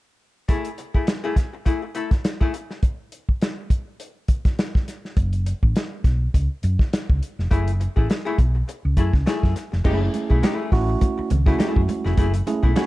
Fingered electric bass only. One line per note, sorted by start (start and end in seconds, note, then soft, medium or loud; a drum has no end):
5.17 5.52 F#1 medium
5.63 5.73 A1 medium
6.05 6.27 B1 medium
6.34 6.47 C#2 medium
6.64 6.76 F#2 medium
6.93 muted fingered electric bass stroke soft
7.10 7.19 C#2 medium
7.39 7.48 F1 medium
7.51 7.86 F#1 loud
7.97 8.07 A1 medium
8.39 8.61 B1 medium
8.85 8.94 C#2 medium
8.97 9.10 F#2 medium
9.14 9.23 C#2 medium
9.44 9.53 F#2 medium
9.73 9.82 F1 medium
9.85 10.07 F#1 loud
10.31 10.40 B1 medium
10.72 10.94 A1 medium
11.19 muted fingered electric bass stroke soft
11.31 11.53 C#2 medium
11.77 11.86 F#2 medium
12.05 12.15 F1 medium
12.18 12.40 F#1 loud
12.64 12.73 B1 medium